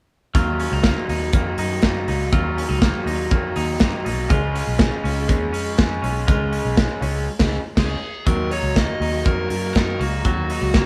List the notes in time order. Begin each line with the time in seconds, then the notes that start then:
0.35 D#2 D#3 F#3 A#3 F4, kick, closed hi-hat
0.60 C#4, open hi-hat
0.72 C#2 D#4
0.84 D#3 F#3 A#3 F4, kick, snare, closed hi-hat
1.09 D#2 D#4, open hi-hat
1.33 F2 D#3 F#3 A#3 F4, kick, closed hi-hat
1.58 F#2 D#4, open hi-hat
1.82 F#2 D#3 F#3 A#3, kick, snare, closed hi-hat
1.86 F4
2.07 C#2 F#3 A#3 D#4 F4, open hi-hat
2.32 D#2 D#3 F#3 A#3 F4, kick, closed hi-hat
2.57 C#4, open hi-hat
2.69 C#2 D#4
2.80 D#3 F#3 A#3 F4, kick, snare, closed hi-hat
3.06 D#2 F#3 A#3 D#4 F4, open hi-hat
3.30 F2 D#3 F#3 A#3 F4, kick, closed hi-hat
3.56 D#2 D#4, open hi-hat
3.79 F#2 D#3 F#3 A#3 F4, kick, snare, closed hi-hat
4.04 B1 F#3 A#3 D#4 F4, open hi-hat
4.29 C#2 C#3 G#3 C#4 F4, kick, closed hi-hat
4.54 C#4, open hi-hat
4.67 B1
4.79 C#3 G#3 C#4 F4, kick, snare, closed hi-hat
5.04 C#2 C#4, open hi-hat
5.28 D#2 C#3 G#3 C#4 F4, kick, closed hi-hat
5.53 F2 C#4, open hi-hat
5.78 F2 C#3 G#3 C#4 F4, kick, snare, closed hi-hat
6.02 B1 G#3 C#4 F4, open hi-hat
6.27 C#2 C#3 G#3 C#4 F4, kick, closed hi-hat
6.52 C#4, open hi-hat
6.65 B1
6.77 C#3 G#3 C#4 F4, kick, snare, closed hi-hat
7.01 C#2 G#3 C#4 F4, open hi-hat
7.39 C#2 C#3 G#3 C#4 F4, kick, snare, crash
7.76 C#2 C#3 G#3 C#4 F4 G#4, kick, snare, crash
8.26 D#2 D#3 F#3 A#3 F4 A#4, kick, closed hi-hat
8.50 F#3 A#3 D#4 F4 C#5, open hi-hat
8.63 C#2
8.75 D#3 F#3 A#3 F4 D#5, kick, snare, closed hi-hat
9.00 D#2 D#4, open hi-hat
9.24 F2 D#3 F#3 A#3 F4 A#4, kick, closed hi-hat
9.49 F#2 A#3 F4 A#4, open hi-hat
9.53 F#3
9.74 F#2 D#3 F#3 A#3 D#4 F4 A#4, kick, snare, closed hi-hat
9.99 C#2 F#3 A#3 F4 F#4, open hi-hat
10.24 D#2 D#3 F#3 A#3 F4, kick, closed hi-hat
10.48 F#3 A#3 D#4 F4, open hi-hat
10.62 C#2
10.74 D#3 F#3 A#3, kick, snare, closed hi-hat